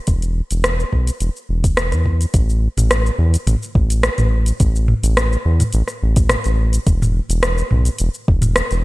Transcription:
0.07 0.42 E1 loud
0.07 kick loud
0.07 closed hi-hat medium
0.07 shaker medium
0.22 closed hi-hat soft
0.22 shaker soft
0.51 0.85 E1 medium
0.51 closed hi-hat soft
0.51 shaker medium
0.64 cross-stick loud
0.64 closed hi-hat medium
0.64 shaker soft
0.80 shaker soft
0.93 1.11 B1 medium
0.93 kick medium
1.07 closed hi-hat soft
1.07 shaker medium
1.20 1.30 E1 loud
1.20 closed hi-hat medium
1.20 shaker medium
1.36 shaker soft
1.49 1.94 E1 medium
1.64 kick medium
1.64 closed hi-hat soft
1.64 shaker medium
1.77 cross-stick loud
1.77 closed hi-hat medium
1.77 shaker medium
1.92 2.26 E2 medium
1.92 cross-stick soft
1.92 closed hi-hat soft
1.92 shaker soft
2.06 kick medium
2.21 closed hi-hat soft
2.21 shaker medium
2.34 2.68 A1 loud
2.34 kick loud
2.34 closed hi-hat medium
2.34 shaker medium
2.50 shaker soft
2.77 3.11 A1 medium
2.77 closed hi-hat soft
2.77 mid tom medium
2.77 shaker medium
2.91 cross-stick loud
2.91 closed hi-hat medium
2.91 shaker medium
3.06 shaker soft
3.19 3.37 E2 medium
3.34 closed hi-hat soft
3.34 shaker medium
3.47 3.56 A1 loud
3.47 closed hi-hat medium
3.47 mid tom medium
3.47 shaker medium
3.63 shaker soft
3.75 4.09 A1 medium
3.75 kick loud
3.90 closed hi-hat soft
3.90 shaker medium
4.03 cross-stick loud
4.03 closed hi-hat medium
4.03 shaker medium
4.18 4.52 A1 medium
4.18 closed hi-hat soft
4.18 mid tom medium
4.18 shaker soft
4.46 closed hi-hat soft
4.46 shaker medium
4.60 4.95 A1 loud
4.60 kick loud
4.60 closed hi-hat medium
4.60 shaker medium
4.76 shaker soft
4.88 mid tom medium
5.03 5.37 A1 medium
5.03 closed hi-hat soft
5.03 shaker medium
5.17 cross-stick loud
5.17 closed hi-hat medium
5.17 shaker medium
5.33 shaker soft
5.45 5.64 E2 medium
5.60 closed hi-hat soft
5.60 mid tom medium
5.60 shaker medium
5.73 5.83 A1 loud
5.73 closed hi-hat medium
5.73 shaker medium
5.88 cross-stick soft
5.88 shaker soft
6.03 6.37 A1 medium
6.16 kick loud
6.16 closed hi-hat soft
6.16 shaker medium
6.29 cross-stick loud
6.29 closed hi-hat medium
6.29 mid tom medium
6.29 shaker medium
6.44 6.79 A1 medium
6.44 closed hi-hat soft
6.44 shaker soft
6.73 closed hi-hat soft
6.73 shaker medium
6.87 7.21 E1 medium
6.87 kick loud
6.87 closed hi-hat medium
6.87 shaker medium
7.02 mid tom medium
7.02 shaker soft
7.29 7.63 E1 medium
7.29 closed hi-hat soft
7.29 shaker medium
7.43 cross-stick loud
7.43 closed hi-hat medium
7.43 shaker medium
7.58 shaker soft
7.71 7.90 B1 medium
7.71 mid tom medium
7.85 closed hi-hat soft
7.85 shaker medium
7.98 8.09 E1 loud
7.98 closed hi-hat medium
7.98 shaker medium
8.14 shaker soft
8.28 8.62 E1 medium
8.28 kick loud
8.42 closed hi-hat soft
8.42 mid tom medium
8.42 shaker medium
8.56 cross-stick loud
8.56 closed hi-hat medium
8.56 shaker medium
8.71 8.84 E1 medium
8.71 closed hi-hat soft
8.71 shaker soft

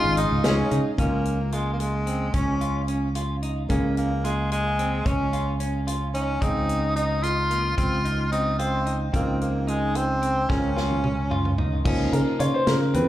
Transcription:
0.00 0.24 G#1 medium
0.00 0.34 C#3 medium
0.00 0.34 G#3 medium
0.00 0.34 D#4 medium
0.00 0.17 F4 loud
0.00 0.34 G#4 medium
0.00 0.17 F5 medium
0.17 0.47 D#4 medium
0.17 0.36 F4 medium
0.17 0.42 D#5 medium
0.17 closed hi-hat medium
0.31 0.62 C#2 medium
0.44 0.88 C#3 medium
0.44 0.88 G#3 medium
0.44 0.64 C#4 medium
0.44 0.85 C#4 medium
0.44 0.88 D#4 medium
0.44 0.88 G#4 medium
0.44 0.85 C#5 medium
0.44 snare loud
0.44 closed hi-hat medium
0.71 0.82 C#3 medium
0.71 0.91 D#4 medium
0.71 closed hi-hat medium
0.98 2.31 C#2 medium
0.98 3.66 C#3 soft
0.98 3.66 G#3 soft
0.98 3.66 A#3 soft
0.98 1.54 A#3 medium
0.98 1.38 C#4 medium
0.98 3.66 F4 medium
0.98 kick medium
0.98 closed hi-hat medium
1.25 closed hi-hat soft
1.52 1.73 G#3 medium
1.52 1.93 F4 medium
1.52 closed hi-hat soft
1.73 1.81 A#3 soft
1.80 2.35 G#3 medium
1.80 closed hi-hat medium
2.07 2.27 C4 medium
2.07 closed hi-hat medium
2.34 3.67 C#2 medium
2.34 2.88 C#4 medium
2.34 2.54 C#4 medium
2.34 kick medium
2.34 closed hi-hat medium
2.61 2.81 F4 medium
2.61 closed hi-hat soft
2.88 3.08 C#4 medium
2.88 closed hi-hat soft
3.15 3.35 F4 medium
3.15 closed hi-hat medium
3.43 3.63 D#4 medium
3.43 closed hi-hat soft
3.69 5.03 C#2 medium
3.69 6.37 C#3 soft
3.69 6.37 G#3 soft
3.69 6.37 A#3 soft
3.69 3.95 A#3 medium
3.69 4.10 C#4 medium
3.69 6.37 G#4 medium
3.69 kick medium
3.69 closed hi-hat medium
3.97 4.26 A#3 medium
3.97 closed hi-hat soft
4.24 4.51 G#3 medium
4.24 4.64 F4 medium
4.24 closed hi-hat soft
4.52 5.08 G#3 medium
4.52 closed hi-hat medium
4.79 4.99 C4 medium
4.79 closed hi-hat soft
5.06 6.39 C#2 medium
5.06 5.26 C#4 medium
5.06 5.60 C#4 medium
5.06 kick medium
5.06 closed hi-hat medium
5.33 5.53 F4 soft
5.33 closed hi-hat soft
5.60 5.80 C#4 medium
5.60 closed hi-hat soft
5.87 6.07 F4 medium
5.87 closed hi-hat medium
6.14 6.43 C#4 medium
6.14 6.34 D#4 medium
6.14 closed hi-hat soft
6.41 7.75 C#2 medium
6.41 9.09 C#3 medium
6.41 6.81 C4 medium
6.41 9.10 C4 soft
6.41 6.95 D#4 medium
6.41 9.09 D#4 soft
6.41 9.10 G#4 medium
6.41 kick medium
6.41 closed hi-hat medium
6.69 closed hi-hat soft
6.96 7.25 D#4 medium
6.96 7.36 D#4 medium
6.96 closed hi-hat medium
7.23 7.77 F4 medium
7.23 closed hi-hat medium
7.51 7.71 A#3 medium
7.51 closed hi-hat soft
7.78 9.11 C#2 medium
7.78 7.98 C4 medium
7.78 8.28 F4 medium
7.78 kick medium
7.78 closed hi-hat medium
8.05 8.25 D#4 medium
8.05 closed hi-hat soft
8.32 8.52 C4 medium
8.32 8.57 D#4 medium
8.32 closed hi-hat soft
8.59 8.97 C4 medium
8.59 8.79 F4 medium
8.59 closed hi-hat medium
8.86 9.06 D#4 medium
8.86 closed hi-hat soft
9.13 10.47 C#2 medium
9.13 10.46 C#3 medium
9.13 9.39 A#3 medium
9.13 10.47 C4 soft
9.13 9.53 C4 medium
9.13 10.47 D#4 soft
9.13 10.47 F4 medium
9.13 kick medium
9.13 closed hi-hat medium
9.41 9.70 A#3 medium
9.41 closed hi-hat soft
9.67 9.97 G#3 medium
9.67 10.08 D#4 medium
9.67 closed hi-hat soft
9.95 10.52 C4 medium
9.95 closed hi-hat medium
10.22 10.42 C4 medium
10.22 closed hi-hat soft
10.49 11.83 C#2 medium
10.49 11.82 C#3 medium
10.49 10.69 C#4 medium
10.49 11.82 C#4 soft
10.49 11.58 C#4 medium
10.49 11.83 F4 soft
10.49 11.83 A#4 medium
10.49 kick medium
10.49 snare soft
10.76 10.96 F4 medium
10.76 snare soft
10.91 high tom soft
11.03 11.24 C#4 medium
11.03 mid tom medium
11.31 11.51 F4 medium
11.31 mid tom medium
11.45 mid tom medium
11.58 11.78 D#4 medium
11.58 floor tom medium
11.85 12.06 C#2 medium
11.85 13.08 F3 medium
11.85 13.08 A#3 soft
11.85 12.25 C#4 loud
11.85 13.08 D#4 medium
11.85 kick loud
11.85 crash medium
12.13 12.23 C#3 medium
12.13 12.38 A#4 medium
12.13 closed hi-hat soft
12.39 12.50 C#3 medium
12.39 12.79 F4 medium
12.39 12.54 C#5 medium
12.39 closed hi-hat medium
12.54 12.68 C5 medium
12.67 12.96 C#3 medium
12.67 12.93 A#4 medium
12.67 snare medium
12.67 closed hi-hat medium
12.94 13.08 F2 medium
12.94 13.08 C4 medium
12.94 13.08 B4 medium
12.94 closed hi-hat medium

